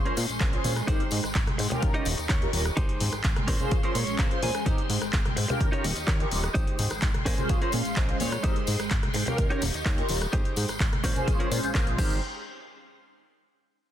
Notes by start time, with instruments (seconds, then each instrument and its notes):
Already playing: string machine G#3 C#4 C6
0.05 clean electric guitar C#4 G#4 A#4 C5, analog polysynth C#4 F4 G#4 C5, closed hi-hat
0.17 analog synth bass A#2, open hi-hat, tambourine
0.29 analog synth bass A#1, muted clean electric guitar stroke, closed hi-hat, tambourine
0.40 analog synth bass A#1, clean electric guitar C#4 G#4 A#4 C5 G#5, kick, clap, closed hi-hat
0.53 analog polysynth C#4 F4 G#4 C5, closed hi-hat
0.64 analog synth bass A#2, analog polysynth C#4 F4 G#4 C5, muted clean electric guitar stroke, open hi-hat, tambourine, high conga
0.76 cross-stick, closed hi-hat, tambourine
0.87 analog synth bass G#1, analog polysynth C4 D#4 G4 A#4, clean electric guitar D#4 G4 G#4 C5, string machine G5, kick, closed hi-hat, tambourine
1.00 closed hi-hat
1.11 analog synth bass G#2, open hi-hat, tambourine
1.24 analog synth bass G#1, cross-stick, closed hi-hat, tambourine
1.35 analog synth bass G#1, kick, clap, closed hi-hat
1.47 cross-stick, closed hi-hat, low conga
1.58 analog synth bass G#2, muted clean electric guitar stroke, open hi-hat, tambourine
1.70 analog polysynth C#4 F4 G4 A#4, muted clean electric guitar stroke, closed hi-hat, tambourine, low conga
1.82 analog synth bass D#2, string machine G4 D#5 C#6, muted clean electric guitar stroke, kick, closed hi-hat, tambourine, low conga
1.94 analog polysynth C#4 F4 G4 A#4, clean electric guitar D#4 G4 A#4 D#5, closed hi-hat
2.05 analog synth bass D#1, open hi-hat, tambourine
2.18 analog synth bass D#2, muted clean electric guitar stroke, closed hi-hat, tambourine
2.29 analog synth bass D#2, clean electric guitar D#4 G4 A#4 C#5, kick, clap, closed hi-hat
2.41 analog polysynth C#4 F4 G4 A#4, closed hi-hat
2.53 analog synth bass D#1, analog polysynth C#4 F4 G4 A#4, muted clean electric guitar stroke, open hi-hat, tambourine, high conga
2.65 cross-stick, tambourine
2.77 analog synth bass G#1, string machine G#3 G5 C6, clean electric guitar D#4 G4 G#4 C5, kick, closed hi-hat, tambourine
2.89 closed hi-hat
3.00 analog synth bass G#2, open hi-hat, tambourine, high conga
3.13 analog synth bass G#1, cross-stick, closed hi-hat, tambourine
3.24 analog synth bass G#1, kick, clap, closed hi-hat, tambourine
3.36 cross-stick, closed hi-hat, low conga
3.47 analog synth bass A#2, clean electric guitar C#4 G#4 A#4 C5, string machine C#4, kick, open hi-hat, tambourine
3.59 analog polysynth C#4 F4 G#4 C5, closed hi-hat, tambourine, low conga
3.71 analog synth bass A#1, kick, closed hi-hat, tambourine
3.83 clean electric guitar C#4 G#4 A#4 C5, analog polysynth C#4 F4 G#4 C5, closed hi-hat
3.95 analog synth bass A#2, clean electric guitar C#5, open hi-hat, tambourine
4.07 analog synth bass A#1, muted clean electric guitar stroke, closed hi-hat, tambourine
4.18 analog synth bass A#1, clean electric guitar C#4 G#4 A#4 C5 F5, kick, clap, closed hi-hat
4.31 analog polysynth C#4 F4 G#4 C5, closed hi-hat
4.42 analog synth bass A#2, analog polysynth C#4 F4 G#4 C5, clean electric guitar G#5, muted clean electric guitar stroke, open hi-hat, tambourine, high conga
4.55 cross-stick, closed hi-hat, tambourine
4.66 analog synth bass G#1, analog polysynth C4 D#4 G4 A#4, clean electric guitar D#4 G4 G#4 C5, string machine G5, kick, closed hi-hat, tambourine
4.78 closed hi-hat
4.90 analog synth bass G#2, open hi-hat, tambourine
5.02 analog synth bass G#1, cross-stick, closed hi-hat, tambourine
5.13 analog synth bass G#1, kick, clap, closed hi-hat, tambourine
5.25 cross-stick, closed hi-hat, low conga
5.36 analog synth bass G#2, muted clean electric guitar stroke, open hi-hat, tambourine
5.48 analog polysynth C#4 F4 G4 A#4, muted clean electric guitar stroke, closed hi-hat, tambourine, low conga
5.60 analog synth bass D#2, string machine G4 D#5 C#6, muted clean electric guitar stroke, kick, closed hi-hat, tambourine, low conga
5.72 analog polysynth C#4 F4 G4 A#4, clean electric guitar D#4 G4 A#4 C#5, closed hi-hat
5.84 analog synth bass D#1, open hi-hat, tambourine
5.96 muted clean electric guitar stroke, closed hi-hat, tambourine
6.07 analog synth bass D#2, clean electric guitar D#4 G4 A#4 C#5, kick, clap, closed hi-hat, tambourine
6.19 analog polysynth C#4 F4 G4 A#4, closed hi-hat
6.31 analog synth bass D#1, analog polysynth C#4 F4 G4 A#4, muted clean electric guitar stroke, open hi-hat, tambourine, high conga
6.44 cross-stick, tambourine
6.54 analog synth bass G#1, string machine G#3 G5 C6, clean electric guitar D#4 G4 G#4 C5, kick, closed hi-hat, tambourine
6.67 closed hi-hat
6.79 analog synth bass G#2, open hi-hat, tambourine, high conga
6.90 analog synth bass G#1, cross-stick, closed hi-hat, tambourine
7.02 analog synth bass G#1, kick, clap, closed hi-hat, tambourine
7.14 cross-stick, closed hi-hat, low conga
7.25 analog synth bass A#2, clean electric guitar C#4 G#4 A#4 C5 G#5, string machine C#4, kick, open hi-hat, tambourine
7.38 analog polysynth C#4 F4 G#4 C5, closed hi-hat, tambourine, low conga
7.49 analog synth bass A#1, clean electric guitar F5, kick, closed hi-hat, tambourine
7.61 clean electric guitar C#4 G#4 A#4 C5, analog polysynth C#4 F4 G#4 C5, closed hi-hat
7.72 analog synth bass A#2, clean electric guitar F5, open hi-hat, tambourine
7.85 analog synth bass A#1, muted clean electric guitar stroke, closed hi-hat, tambourine
7.96 analog synth bass A#1, clean electric guitar C#4 G#4 A#4 C5 D#5, kick, clap, closed hi-hat
8.08 analog polysynth C#4 F4 G#4 C5, closed hi-hat
8.20 analog synth bass A#2, analog polysynth C#4 F4 G#4 C5, clean electric guitar C#5, muted clean electric guitar stroke, open hi-hat, tambourine, high conga
8.32 cross-stick, closed hi-hat, tambourine
8.43 analog synth bass G#1, analog polysynth C4 D#4 G4 A#4, clean electric guitar D#4 G4 G#4 C5, string machine G5, kick, closed hi-hat
8.56 closed hi-hat
8.67 analog synth bass G#2, open hi-hat, tambourine
8.80 analog synth bass G#1, cross-stick, closed hi-hat, tambourine
8.91 analog synth bass G#1, kick, clap, closed hi-hat, tambourine
9.03 cross-stick, closed hi-hat, low conga
9.14 analog synth bass G#2, muted clean electric guitar stroke, open hi-hat, tambourine
9.26 analog polysynth C#4 F4 G4 A#4, muted clean electric guitar stroke, closed hi-hat, tambourine, low conga
9.38 analog synth bass D#2, string machine G4 D#5 C#6, muted clean electric guitar stroke, kick, closed hi-hat, tambourine, low conga
9.50 analog polysynth C#4 F4 G4 A#4, clean electric guitar D#4 G4 A#4 C#5, closed hi-hat
9.62 analog synth bass D#1, open hi-hat, tambourine
9.74 analog synth bass D#2, muted clean electric guitar stroke, closed hi-hat, tambourine
9.85 analog synth bass D#2, clean electric guitar D#4 G4 A#4 C#5, kick, clap, closed hi-hat
9.97 analog polysynth C#4 F4 G4 A#4, closed hi-hat
10.09 analog synth bass D#1, analog polysynth C#4 F4 G4 A#4, muted clean electric guitar stroke, open hi-hat, tambourine, high conga
10.21 cross-stick, closed hi-hat, tambourine
10.33 analog synth bass G#1, string machine G#3 G5 C6, clean electric guitar D#4 G4 G#4 C5, kick, closed hi-hat, tambourine
10.45 closed hi-hat
10.56 analog synth bass G#2, open hi-hat, tambourine
10.68 analog synth bass G#1, cross-stick, closed hi-hat, tambourine
10.80 analog synth bass G#1, kick, clap, closed hi-hat
10.92 cross-stick, closed hi-hat, low conga
11.04 analog synth bass A#2, clean electric guitar C#4 G#4 A#4 C5, string machine C#4, kick, open hi-hat, tambourine
11.16 analog polysynth C#4 F4 G#4 C5, closed hi-hat, tambourine, low conga
11.28 analog synth bass A#1, kick, closed hi-hat, tambourine
11.39 analog polysynth C#4 F4 G#4 C5, clean electric guitar C#4 G#4 A#4 C5, closed hi-hat
11.51 analog synth bass A#2, analog polysynth C#4 F4 G#4 C5, open hi-hat, tambourine
11.63 analog synth bass A#1, analog polysynth C#4 F4 G#4 C5, muted clean electric guitar stroke, closed hi-hat, tambourine
11.74 analog synth bass A#1, analog polysynth C#4 F4 G#4 C5, clean electric guitar C#4 G#4 A#4 C5, kick, clap, closed hi-hat, tambourine
11.87 closed hi-hat
11.97 analog synth bass G#1, analog polysynth C4 D#4 G4 A#4, clean electric guitar G4 G#4 C5, string machine G#4 G5 C6, kick, crash, tambourine, high conga
12.10 tambourine